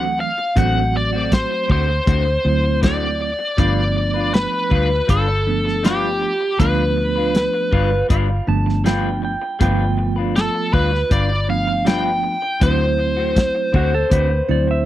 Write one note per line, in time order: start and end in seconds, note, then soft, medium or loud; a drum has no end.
0.00 0.23 D2 medium
0.00 0.29 E3 medium
0.00 0.29 F#3 medium
0.00 0.29 A3 medium
0.00 0.29 C4 medium
0.00 0.20 F#5 medium
0.18 0.58 F5 loud
0.18 muted clean electric guitar stroke soft
0.38 muted clean electric guitar stroke soft
0.56 1.44 A1 loud
0.56 0.79 D3 medium
0.56 1.70 F#3 medium
0.56 1.70 A3 medium
0.56 0.80 A3 medium
0.56 1.69 C4 medium
0.56 0.80 C4 medium
0.56 1.69 F#4 medium
0.56 0.80 F#4 medium
0.56 0.96 F#5 medium
0.56 kick medium
0.56 closed hi-hat medium
0.94 1.33 D5 medium
0.94 muted clean electric guitar stroke soft
1.13 1.31 A3 soft
1.13 1.31 C4 soft
1.13 1.31 F#4 medium
1.32 1.68 C5 medium
1.32 muted clean electric guitar stroke soft
1.32 kick medium
1.32 snare loud
1.32 closed hi-hat medium
1.51 muted clean electric guitar stroke soft
1.68 1.99 D2 medium
1.68 1.88 D3 medium
1.68 1.89 A3 medium
1.68 1.88 C4 medium
1.68 1.87 F#4 medium
1.68 2.80 C5 medium
1.68 kick medium
1.89 muted clean electric guitar stroke soft
2.06 2.36 D2 loud
2.06 2.26 D3 medium
2.06 2.26 A3 medium
2.06 2.25 C4 medium
2.06 2.25 F#4 medium
2.06 kick loud
2.06 closed hi-hat medium
2.26 muted clean electric guitar stroke soft
2.45 3.32 D2 medium
2.45 3.30 F#3 medium
2.45 3.30 A3 medium
2.45 3.30 C4 medium
2.45 3.30 E4 medium
2.64 muted clean electric guitar stroke soft
2.81 3.05 D3 medium
2.81 3.06 A3 medium
2.81 3.06 C4 medium
2.81 3.06 F#4 medium
2.81 3.58 D5 medium
2.81 kick medium
2.81 snare loud
2.81 closed hi-hat medium
3.20 muted clean electric guitar stroke soft
3.39 muted clean electric guitar stroke soft
3.57 4.46 G1 medium
3.57 4.71 F3 medium
3.57 3.81 G3 medium
3.57 4.71 A3 medium
3.57 4.71 B3 medium
3.57 3.81 D4 medium
3.57 4.71 D4 medium
3.57 3.81 F4 medium
3.57 3.82 B4 medium
3.57 4.34 D5 medium
3.57 kick loud
3.57 closed hi-hat medium
3.95 muted clean electric guitar stroke soft
4.14 4.32 D4 soft
4.14 4.32 F4 soft
4.14 4.33 B4 soft
4.32 5.11 B4 medium
4.32 muted clean electric guitar stroke soft
4.32 snare loud
4.32 closed hi-hat soft
4.52 muted clean electric guitar stroke soft
4.70 5.00 D2 medium
4.70 4.90 G3 medium
4.70 4.90 D4 medium
4.70 4.89 F4 medium
4.70 4.88 B4 medium
4.70 kick medium
4.89 muted clean electric guitar stroke soft
5.07 6.25 G1 medium
5.07 5.27 G3 soft
5.07 5.28 D4 medium
5.07 5.27 F4 medium
5.07 5.85 A4 medium
5.07 5.26 B4 medium
5.07 kick medium
5.07 closed hi-hat medium
5.28 muted clean electric guitar stroke soft
5.47 6.32 F3 medium
5.47 6.32 A3 medium
5.47 6.32 B3 medium
5.47 6.32 D4 medium
5.65 muted clean electric guitar stroke soft
5.65 snare soft
5.83 6.07 G3 medium
5.83 6.07 D4 medium
5.83 6.07 F4 medium
5.83 6.60 G4 medium
5.83 6.08 B4 medium
5.83 snare loud
5.83 closed hi-hat medium
6.21 muted clean electric guitar stroke soft
6.41 muted clean electric guitar stroke soft
6.58 7.47 D2 medium
6.58 7.72 F3 medium
6.58 6.82 G3 medium
6.58 7.73 A3 medium
6.58 7.72 B3 medium
6.58 6.82 D4 medium
6.58 7.72 D4 medium
6.58 6.83 F4 medium
6.58 8.06 B4 medium
6.58 6.83 B4 medium
6.58 kick loud
6.58 closed hi-hat medium
6.97 muted clean electric guitar stroke soft
7.16 7.33 D4 soft
7.16 7.34 F4 soft
7.16 7.34 B4 soft
7.34 muted clean electric guitar stroke soft
7.34 snare loud
7.34 closed hi-hat medium
7.53 muted clean electric guitar stroke medium
7.71 8.02 G1 medium
7.71 7.91 G3 medium
7.71 7.92 D4 medium
7.71 7.91 F4 medium
7.71 7.90 B4 medium
7.71 8.09 F5 medium
7.71 kick medium
7.91 muted clean electric guitar stroke soft
8.09 8.39 G1 loud
8.09 8.29 G3 medium
8.09 8.29 D4 medium
8.09 8.28 F4 medium
8.09 8.27 B4 medium
8.09 8.47 F5 medium
8.09 kick loud
8.09 closed hi-hat medium
8.28 muted clean electric guitar stroke soft
8.47 9.35 G1 medium
8.47 9.33 F3 medium
8.47 9.33 A3 medium
8.47 9.33 B3 medium
8.47 9.32 D4 medium
8.47 8.84 A5 medium
8.66 muted clean electric guitar stroke soft
8.66 snare soft
8.84 9.08 G3 medium
8.84 9.08 D4 medium
8.84 9.08 F4 medium
8.84 9.09 B4 medium
8.84 9.22 G5 medium
8.84 snare medium
8.84 closed hi-hat medium
9.22 9.60 G5 medium
9.22 muted clean electric guitar stroke soft
9.42 muted clean electric guitar stroke soft
9.59 10.48 G1 loud
9.59 10.74 F3 medium
9.59 9.83 G3 medium
9.59 10.74 A3 medium
9.59 10.74 B3 medium
9.59 9.83 D4 medium
9.59 9.84 F4 medium
9.59 10.73 F4 medium
9.59 9.84 B4 medium
9.59 10.16 G5 medium
9.59 kick loud
9.59 closed hi-hat medium
9.97 muted clean electric guitar stroke soft
10.16 10.34 D4 soft
10.16 10.35 F4 soft
10.16 10.35 B4 soft
10.35 10.73 A4 medium
10.35 muted clean electric guitar stroke soft
10.35 snare medium
10.35 closed hi-hat medium
10.54 muted clean electric guitar stroke soft
10.72 11.02 D2 medium
10.72 10.92 G3 medium
10.72 10.92 D4 medium
10.72 10.91 F4 medium
10.72 11.12 B4 medium
10.72 10.90 B4 medium
10.72 kick medium
10.91 muted clean electric guitar stroke soft
10.91 snare soft
11.10 12.27 G1 medium
11.10 11.30 G3 medium
11.10 11.30 D4 medium
11.10 11.29 F4 medium
11.10 11.28 B4 medium
11.10 11.46 D5 medium
11.10 kick loud
11.10 closed hi-hat soft
11.30 muted clean electric guitar stroke soft
11.49 12.34 F3 medium
11.49 12.34 A3 medium
11.49 12.34 B3 medium
11.49 12.34 D4 medium
11.49 11.87 F5 medium
11.67 muted clean electric guitar stroke soft
11.85 12.08 G3 medium
11.85 12.09 D4 medium
11.85 12.09 F4 medium
11.85 12.10 B4 medium
11.85 12.64 G5 loud
11.85 snare loud
11.85 closed hi-hat medium
12.23 muted clean electric guitar stroke soft
12.42 muted clean electric guitar stroke soft
12.60 13.49 D2 medium
12.60 12.84 D3 medium
12.60 13.74 F#3 medium
12.60 12.84 A3 medium
12.60 13.74 A3 medium
12.60 12.84 C4 medium
12.60 13.74 C4 medium
12.60 13.74 E4 medium
12.60 12.85 F#4 medium
12.60 14.83 C5 medium
12.60 kick loud
12.60 closed hi-hat medium
12.98 muted clean electric guitar stroke soft
13.17 13.35 A3 soft
13.17 13.35 C4 soft
13.17 13.36 F#4 soft
13.35 muted clean electric guitar stroke soft
13.35 kick medium
13.35 snare loud
13.35 closed hi-hat medium
13.55 muted clean electric guitar stroke soft
13.73 14.03 D2 medium
13.73 13.93 D3 medium
13.73 13.93 A3 medium
13.73 13.92 C4 medium
13.73 13.91 F#4 medium
13.73 13.94 F#4 medium
13.73 kick medium
13.92 14.11 A4 medium
13.92 muted clean electric guitar stroke soft
14.10 14.40 D2 loud
14.10 14.30 D3 medium
14.10 14.30 A3 medium
14.10 14.29 C4 medium
14.10 14.28 F#4 medium
14.10 14.49 B4 medium
14.10 kick loud
14.10 closed hi-hat medium
14.30 muted clean electric guitar stroke medium
14.49 14.86 D2 medium
14.49 14.86 F#3 medium
14.49 14.86 A3 medium
14.49 14.86 C4 medium
14.49 14.86 E4 medium
14.49 14.69 D5 medium
14.67 14.86 E5 medium
14.67 muted clean electric guitar stroke soft